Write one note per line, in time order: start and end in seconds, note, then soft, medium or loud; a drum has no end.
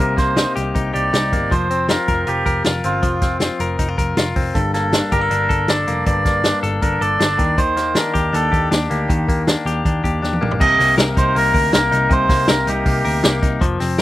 0.00 0.44 C2 loud
0.00 1.51 C3 medium
0.00 0.17 A#3 medium
0.00 0.35 D#4 medium
0.00 0.54 G4 medium
0.00 0.17 A#4 medium
0.17 1.32 A#3 medium
0.17 0.53 C5 medium
0.17 kick medium
0.17 snare soft
0.17 closed hi-hat medium
0.36 0.74 D#4 medium
0.36 snare medium
0.36 closed hi-hat medium
0.56 0.72 C2 medium
0.56 0.92 G4 medium
0.56 closed hi-hat medium
0.75 0.91 C2 medium
0.75 1.12 D#4 medium
0.75 kick medium
0.75 closed hi-hat medium
0.94 1.10 C2 medium
0.94 1.55 G4 medium
0.94 1.53 D5 loud
0.94 closed hi-hat medium
1.13 1.34 C2 medium
1.13 1.55 D#4 medium
1.13 snare loud
1.13 closed hi-hat medium
1.33 1.48 G1 medium
1.33 1.70 A#3 medium
1.33 kick medium
1.33 closed hi-hat medium
1.51 1.97 F1 medium
1.51 3.01 F3 medium
1.51 1.87 C5 medium
1.51 kick medium
1.51 closed hi-hat medium
1.71 2.83 C4 medium
1.71 closed hi-hat medium
1.89 2.26 F4 medium
1.89 2.29 A#4 medium
1.89 snare loud
1.89 closed hi-hat medium
2.08 2.24 F1 medium
2.08 2.45 A#4 medium
2.08 kick medium
2.08 closed hi-hat medium
2.27 2.43 F1 medium
2.27 2.64 F4 medium
2.27 2.63 G4 loud
2.27 closed hi-hat medium
2.46 2.62 F1 medium
2.46 3.60 A#4 medium
2.46 kick medium
2.46 closed hi-hat medium
2.64 2.81 F1 medium
2.64 3.40 F4 medium
2.64 snare loud
2.64 closed hi-hat medium
2.84 3.00 G1 medium
2.84 3.21 C4 medium
2.84 3.38 F4 medium
2.84 closed hi-hat medium
3.03 3.48 F1 medium
3.03 4.55 F3 medium
3.03 kick medium
3.03 closed hi-hat medium
3.21 4.35 C4 medium
3.21 kick medium
3.21 snare soft
3.21 closed hi-hat medium
3.40 3.78 F4 medium
3.40 snare medium
3.40 closed hi-hat medium
3.60 3.76 F1 medium
3.60 3.98 A#4 medium
3.60 closed hi-hat medium
3.79 3.95 F1 medium
3.79 3.89 D#4 soft
3.79 kick medium
3.79 closed hi-hat medium
3.89 4.16 F4 soft
3.98 4.14 F1 medium
3.98 5.12 A#4 medium
3.98 kick medium
3.98 closed hi-hat medium
4.17 4.33 F1 medium
4.17 4.59 F4 medium
4.17 snare loud
4.17 closed hi-hat medium
4.36 4.52 F1 medium
4.36 4.59 C4 medium
4.36 kick medium
4.36 open hi-hat medium
4.54 5.00 G1 loud
4.54 6.06 G2 medium
4.54 4.72 A4 medium
4.54 kick medium
4.54 closed hi-hat medium
4.73 5.87 A#3 medium
4.73 5.13 A4 medium
4.73 snare soft
4.73 closed hi-hat medium
4.93 5.30 D4 medium
4.93 snare loud
4.93 closed hi-hat medium
5.12 5.28 G1 medium
5.12 5.21 G4 medium
5.12 5.71 A#4 loud
5.12 kick medium
5.12 closed hi-hat medium
5.21 5.48 A4 medium
5.31 5.47 G1 loud
5.31 5.68 D4 medium
5.31 closed hi-hat medium
5.49 5.66 G1 medium
5.49 6.62 A4 medium
5.49 kick medium
5.49 closed hi-hat medium
5.68 5.84 G1 medium
5.68 6.44 D4 medium
5.68 6.05 D5 loud
5.68 snare medium
5.68 closed hi-hat medium
5.88 6.04 F1 medium
5.88 6.25 A#3 medium
5.88 closed hi-hat medium
6.06 6.52 G1 medium
6.06 7.43 G2 medium
6.06 6.59 D5 loud
6.06 kick medium
6.06 closed hi-hat medium
6.25 7.76 A#3 medium
6.25 kick medium
6.25 snare soft
6.25 closed hi-hat medium
6.44 6.82 D4 medium
6.44 snare medium
6.44 closed hi-hat medium
6.63 6.79 G1 medium
6.63 7.00 A4 medium
6.63 closed hi-hat medium
6.82 6.98 G1 medium
6.82 7.19 D4 medium
6.82 7.02 A#4 medium
6.82 kick medium
6.82 closed hi-hat medium
7.01 7.17 G1 medium
7.01 7.43 A4 medium
7.01 7.60 D5 loud
7.01 closed hi-hat medium
7.20 7.36 G1 medium
7.20 7.61 D4 medium
7.20 snare loud
7.20 closed hi-hat medium
7.38 7.93 D#2 medium
7.38 7.57 D#3 medium
7.38 kick medium
7.38 closed hi-hat medium
7.58 9.09 D#3 medium
7.58 7.97 C5 loud
7.58 kick loud
7.58 closed hi-hat medium
7.77 8.90 A#3 medium
7.77 snare soft
7.77 closed hi-hat medium
7.95 8.32 D4 medium
7.95 8.35 A#4 medium
7.95 snare loud
7.95 closed hi-hat medium
8.14 8.30 D#2 medium
8.14 8.51 G4 medium
8.14 kick medium
8.14 closed hi-hat medium
8.33 8.49 D#2 loud
8.33 8.70 D4 medium
8.33 8.69 A4 medium
8.33 closed hi-hat medium
8.52 8.68 D#2 loud
8.52 9.66 G4 medium
8.52 kick medium
8.52 closed hi-hat medium
8.71 8.87 D#2 medium
8.71 9.46 D4 medium
8.71 snare medium
8.71 closed hi-hat medium
8.90 9.06 D2 medium
8.90 9.28 A#3 medium
8.90 9.43 G4 medium
8.90 closed hi-hat medium
9.09 9.54 D#2 medium
9.09 10.60 D#3 medium
9.09 kick medium
9.09 closed hi-hat medium
9.29 10.41 A#3 medium
9.29 kick medium
9.29 closed hi-hat medium
9.47 9.84 D4 medium
9.47 snare loud
9.47 closed hi-hat medium
9.66 9.81 D#2 medium
9.66 10.03 G4 medium
9.66 closed hi-hat medium
9.85 10.01 D#2 medium
9.85 10.21 D4 medium
9.85 kick medium
9.85 closed hi-hat medium
10.04 10.20 D#2 loud
10.04 10.97 G4 medium
10.04 kick medium
10.04 closed hi-hat medium
10.22 10.38 D#2 medium
10.22 10.64 D4 medium
10.22 snare soft
10.33 high tom medium
10.41 10.57 A#1 medium
10.41 10.78 A#3 medium
10.41 mid tom medium
10.51 floor tom medium
10.60 10.76 C2 loud
10.60 12.08 C3 medium
10.60 10.95 D#5 loud
10.60 kick loud
10.60 crash medium
10.79 10.95 C2 medium
10.79 11.35 A#3 medium
10.79 snare soft
10.79 hi-hat pedal medium
10.79 open hi-hat medium
10.98 11.13 C2 medium
10.98 11.54 A#4 medium
10.98 snare loud
10.98 hi-hat pedal medium
10.98 open hi-hat medium
11.17 11.32 C2 medium
11.17 11.90 D#4 medium
11.17 11.37 C5 loud
11.17 kick loud
11.17 hi-hat pedal medium
11.17 open hi-hat medium
11.35 11.51 C2 loud
11.35 11.72 A#3 medium
11.35 11.72 A#4 loud
11.35 hi-hat pedal medium
11.35 open hi-hat medium
11.54 11.70 D2 medium
11.54 12.48 A#4 medium
11.54 kick medium
11.54 hi-hat pedal medium
11.54 open hi-hat medium
11.73 11.89 C2 medium
11.73 12.29 A#3 medium
11.73 12.12 A#4 medium
11.73 snare loud
11.73 hi-hat pedal medium
11.73 open hi-hat medium
11.91 12.08 C2 loud
11.91 12.66 D#4 medium
11.91 hi-hat pedal medium
11.91 open hi-hat medium
12.10 12.26 C2 medium
12.10 13.61 C3 medium
12.10 12.50 C5 loud
12.10 kick loud
12.10 hi-hat pedal medium
12.10 open hi-hat medium
12.29 12.45 C2 medium
12.29 12.86 A#3 medium
12.29 kick loud
12.29 snare soft
12.29 hi-hat pedal medium
12.29 open hi-hat medium
12.48 12.64 C2 medium
12.48 13.04 A#4 medium
12.48 12.68 A#4 medium
12.48 snare loud
12.48 hi-hat pedal medium
12.48 open hi-hat medium
12.67 12.83 C2 loud
12.67 13.41 D#4 medium
12.67 13.39 G4 medium
12.67 hi-hat pedal medium
12.67 open hi-hat medium
12.86 13.01 C2 medium
12.86 13.23 A#3 medium
12.86 kick medium
12.86 hi-hat pedal medium
12.86 open hi-hat medium
13.04 13.21 D2 medium
13.04 13.83 A#4 medium
13.04 hi-hat pedal medium
13.04 open hi-hat medium
13.23 13.39 C2 medium
13.23 13.80 A#3 medium
13.23 snare loud
13.23 hi-hat pedal medium
13.23 open hi-hat medium
13.42 13.58 C2 loud
13.42 13.65 D#4 medium
13.42 kick medium
13.42 hi-hat pedal medium
13.42 open hi-hat medium
13.61 13.77 F1 loud
13.61 14.02 F3 medium
13.61 kick loud
13.61 hi-hat pedal medium
13.61 open hi-hat medium
13.80 13.96 F1 medium
13.80 14.02 C4 medium
13.80 snare soft
13.80 hi-hat pedal medium
13.80 open hi-hat medium
13.98 snare loud